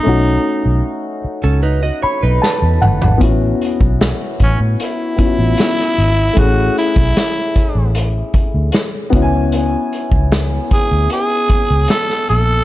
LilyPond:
<<
  \new Staff \with { instrumentName = "Clean electric guitar" } { \time 4/4 \key a \major \tempo 4 = 76 r4. r16 <cis' a'>16 <dis' b'>16 <fis' dis''>16 cis''16 <dis' b'>4~ <dis' b'>16 | r1 | r1 | r1 | }
  \new Staff \with { instrumentName = "Tenor saxophone" } { \time 4/4 \key a \major dis'4 r2. | r4. cis'8 e'2 | fis'8 e'4. r2 | r4. gis'8 gis'4 a'8 a'8 | }
  \new Staff \with { instrumentName = "Grand piano" } { \time 4/4 \key a \major << { r2 r8 b''8 a''8 fis''8 | r1 | r1 | r1 | } \\ { <a cis' dis' fis'>1 | <b cis' e' fis'>2~ <b cis' e' fis'>8 <b cis' e' f' fis'>4. | <a cis' e' gis'>2.~ <a cis' e' gis'>8 <b cis' e' fis' gis''>8~ | <b cis' e' fis' gis''>2.~ <b cis' e' fis' gis''>8 r8 | } >> }
  \new Staff \with { instrumentName = "Fingered electric bass" } { \clef bass \time 4/4 \key a \major b,,8 r16 b,,16 r8. cis,8. r16 b,,16 r16 e,16 g,,16 gis,,16 | a,,8 r16 b,,8 r16 a,,16 a,16 r8. a,,16 r8 gis,,8 | a,,8 r16 b,,16 r8. a,,8. r16 d,16 r8 cis,8~ | cis,8 r16 cis,8. r16 d,16 r8. cis,16 r8 bes,,8 | }
  \new DrumStaff \with { instrumentName = "Drums" } \drummode { \time 4/4 r4 r4 r4 sn8 toml16 tomfh16 | <hh bd>8 hh16 bd16 <hh sn>8 <hh bd>8 hh8 <hh bd>8 <hh sn>16 sn16 hh8 | <hh bd>8 hh16 bd16 <hh sn>8 <hh bd>8 hh8 <hh bd>8 <hh sn>8 <hh bd>8 | hh8 hh16 bd16 <hh sn>8 <hh bd>8 hh8 <hh bd>8 <hh sn>16 sn16 hh8 | }
>>